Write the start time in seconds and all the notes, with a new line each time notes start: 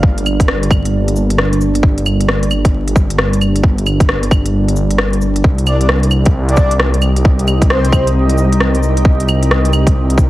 Already playing: G1 G3 A#3 D4 A#4 D5
0.03 kick
0.18 closed hi-hat
0.26 cabasa, claves
0.40 kick, closed hi-hat
0.48 cross-stick
0.63 closed hi-hat
0.70 kick, cabasa, claves
0.85 closed hi-hat
1.08 closed hi-hat
1.16 cabasa
1.30 closed hi-hat
1.38 cross-stick
1.53 closed hi-hat
1.61 cabasa
1.75 closed hi-hat
1.83 kick
1.98 closed hi-hat
2.06 cabasa, claves
2.20 closed hi-hat
2.28 cross-stick
2.43 closed hi-hat
2.51 cabasa, claves
2.65 kick, closed hi-hat
2.88 closed hi-hat
2.96 kick, cabasa
3.10 closed hi-hat
3.19 cross-stick
3.33 closed hi-hat
3.41 cabasa, claves
3.56 closed hi-hat
3.63 kick
3.78 closed hi-hat
3.86 cabasa, claves
4.00 kick, closed hi-hat
4.09 cross-stick
4.23 closed hi-hat
4.31 kick, cabasa, claves
4.46 closed hi-hat
4.69 closed hi-hat
4.76 cabasa
4.91 closed hi-hat
4.99 cross-stick
5.13 closed hi-hat
5.22 cabasa
5.36 closed hi-hat
5.42 C2 G3 G4, kick
5.58 closed hi-hat
5.66 C4 D#4 D5, cabasa, claves
5.81 D5, closed hi-hat
5.89 D#5, cross-stick
6.03 closed hi-hat
6.11 cabasa, claves
6.26 kick, closed hi-hat
6.38 A#4
6.49 D5, closed hi-hat
6.57 kick, cabasa
6.71 closed hi-hat
6.80 cross-stick
6.94 closed hi-hat
7.02 cabasa, claves
7.16 closed hi-hat
7.25 kick
7.39 closed hi-hat
7.48 cabasa, claves
7.62 kick, closed hi-hat
7.70 C5, cross-stick
7.85 closed hi-hat
7.92 kick, cabasa, claves
8.07 closed hi-hat
8.30 closed hi-hat
8.38 cabasa
8.53 closed hi-hat
8.61 cross-stick
8.75 closed hi-hat
8.83 cabasa
8.97 closed hi-hat
9.05 kick
9.20 closed hi-hat
9.29 cabasa, claves
9.43 closed hi-hat
9.51 cross-stick
9.65 closed hi-hat
9.73 cabasa, claves
9.87 kick, closed hi-hat
10.10 closed hi-hat
10.18 kick, cabasa